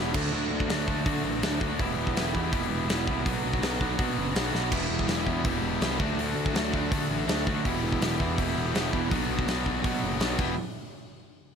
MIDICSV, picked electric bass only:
0, 0, Header, 1, 2, 480
1, 0, Start_track
1, 0, Key_signature, 1, "minor"
1, 0, Tempo, 365854
1, 426, Time_signature, 4, 2, 24, 8
1, 15154, End_track
2, 0, Start_track
2, 0, Title_t, "Picked electric bass"
2, 0, Program_c, 0, 34
2, 0, Note_on_c, 0, 28, 86
2, 164, Note_off_c, 0, 28, 0
2, 187, Note_on_c, 0, 38, 92
2, 410, Note_off_c, 0, 38, 0
2, 438, Note_on_c, 0, 38, 102
2, 651, Note_off_c, 0, 38, 0
2, 659, Note_on_c, 0, 38, 93
2, 885, Note_off_c, 0, 38, 0
2, 902, Note_on_c, 0, 38, 98
2, 1350, Note_off_c, 0, 38, 0
2, 1388, Note_on_c, 0, 50, 105
2, 1610, Note_off_c, 0, 50, 0
2, 1632, Note_on_c, 0, 33, 91
2, 1852, Note_off_c, 0, 33, 0
2, 1873, Note_on_c, 0, 38, 75
2, 2093, Note_off_c, 0, 38, 0
2, 2116, Note_on_c, 0, 38, 90
2, 2334, Note_off_c, 0, 38, 0
2, 2355, Note_on_c, 0, 28, 109
2, 2574, Note_off_c, 0, 28, 0
2, 2584, Note_on_c, 0, 28, 88
2, 2808, Note_off_c, 0, 28, 0
2, 2827, Note_on_c, 0, 28, 85
2, 3049, Note_off_c, 0, 28, 0
2, 3081, Note_on_c, 0, 40, 96
2, 3297, Note_off_c, 0, 40, 0
2, 3320, Note_on_c, 0, 28, 93
2, 3536, Note_off_c, 0, 28, 0
2, 3548, Note_on_c, 0, 28, 81
2, 3770, Note_off_c, 0, 28, 0
2, 3791, Note_on_c, 0, 28, 77
2, 4011, Note_off_c, 0, 28, 0
2, 4035, Note_on_c, 0, 36, 87
2, 4254, Note_off_c, 0, 36, 0
2, 4280, Note_on_c, 0, 35, 100
2, 4496, Note_off_c, 0, 35, 0
2, 4518, Note_on_c, 0, 35, 92
2, 4735, Note_off_c, 0, 35, 0
2, 4747, Note_on_c, 0, 35, 91
2, 5192, Note_off_c, 0, 35, 0
2, 5235, Note_on_c, 0, 47, 92
2, 5453, Note_off_c, 0, 47, 0
2, 5468, Note_on_c, 0, 30, 79
2, 5690, Note_off_c, 0, 30, 0
2, 5710, Note_on_c, 0, 35, 83
2, 5931, Note_off_c, 0, 35, 0
2, 5951, Note_on_c, 0, 35, 82
2, 6171, Note_off_c, 0, 35, 0
2, 6190, Note_on_c, 0, 28, 100
2, 6411, Note_off_c, 0, 28, 0
2, 6424, Note_on_c, 0, 28, 95
2, 6647, Note_off_c, 0, 28, 0
2, 6659, Note_on_c, 0, 28, 90
2, 6885, Note_off_c, 0, 28, 0
2, 6913, Note_on_c, 0, 40, 97
2, 7132, Note_off_c, 0, 40, 0
2, 7148, Note_on_c, 0, 28, 90
2, 7357, Note_off_c, 0, 28, 0
2, 7365, Note_on_c, 0, 28, 86
2, 7597, Note_off_c, 0, 28, 0
2, 7615, Note_on_c, 0, 36, 85
2, 7842, Note_off_c, 0, 36, 0
2, 7875, Note_on_c, 0, 38, 92
2, 8088, Note_off_c, 0, 38, 0
2, 8096, Note_on_c, 0, 38, 100
2, 8323, Note_off_c, 0, 38, 0
2, 8336, Note_on_c, 0, 38, 97
2, 8563, Note_off_c, 0, 38, 0
2, 8584, Note_on_c, 0, 38, 99
2, 9030, Note_off_c, 0, 38, 0
2, 9076, Note_on_c, 0, 50, 94
2, 9294, Note_off_c, 0, 50, 0
2, 9311, Note_on_c, 0, 33, 91
2, 9531, Note_off_c, 0, 33, 0
2, 9548, Note_on_c, 0, 38, 86
2, 9770, Note_off_c, 0, 38, 0
2, 9803, Note_on_c, 0, 38, 79
2, 10018, Note_off_c, 0, 38, 0
2, 10041, Note_on_c, 0, 28, 100
2, 10256, Note_off_c, 0, 28, 0
2, 10267, Note_on_c, 0, 28, 96
2, 10489, Note_off_c, 0, 28, 0
2, 10509, Note_on_c, 0, 28, 90
2, 10730, Note_off_c, 0, 28, 0
2, 10759, Note_on_c, 0, 40, 96
2, 10975, Note_off_c, 0, 40, 0
2, 10997, Note_on_c, 0, 28, 102
2, 11214, Note_off_c, 0, 28, 0
2, 11237, Note_on_c, 0, 28, 93
2, 11455, Note_off_c, 0, 28, 0
2, 11479, Note_on_c, 0, 28, 79
2, 11696, Note_off_c, 0, 28, 0
2, 11717, Note_on_c, 0, 28, 80
2, 11935, Note_off_c, 0, 28, 0
2, 11961, Note_on_c, 0, 35, 105
2, 12177, Note_off_c, 0, 35, 0
2, 12193, Note_on_c, 0, 35, 92
2, 12413, Note_off_c, 0, 35, 0
2, 12422, Note_on_c, 0, 35, 88
2, 12870, Note_off_c, 0, 35, 0
2, 12917, Note_on_c, 0, 47, 102
2, 13135, Note_off_c, 0, 47, 0
2, 13149, Note_on_c, 0, 30, 92
2, 13371, Note_off_c, 0, 30, 0
2, 13380, Note_on_c, 0, 35, 81
2, 13606, Note_off_c, 0, 35, 0
2, 13624, Note_on_c, 0, 28, 90
2, 13848, Note_off_c, 0, 28, 0
2, 15154, End_track
0, 0, End_of_file